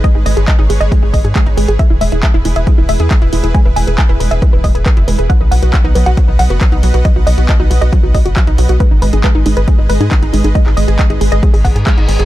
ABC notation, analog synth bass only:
X:1
M:4/4
L:1/16
Q:1/4=137
K:G#m
V:1 name="Analog synth bass" clef=bass
z G,,, G,,, G,,, z G,,, G,,, G,,, z G,,, G,,, G,, z G,,, G,,, G,,, | z E,,, E,,, E,,, z E,,, E,,, E,,, z E,,, E,,, E,, z E,,, E,,, E,,, | z E,,, E,,, E,,, z E,,, E,,, E,,, z E,,, E,,, E,,, z F,,, E,,, E,,, | z B,,, B,,, B,,, z B,,, B,,, B,,, z B,,, B,,, F,,, z B,,, B,,, B,,, |
z B,,, B,,, B,,, z B,,, B,,, B,,, z B,,, B,,, F,,, z B,,, B,,, B,,, | z G,,, G,,, G,,, z G,,, G,,, G,,, z G,,, G,,, G,, z G,,, G,,, G,,, | z G,,, G,,, G,,, z G,,, G,,, G,,, z G,,, G,,, G,, z G,,, G,,, G,,, |]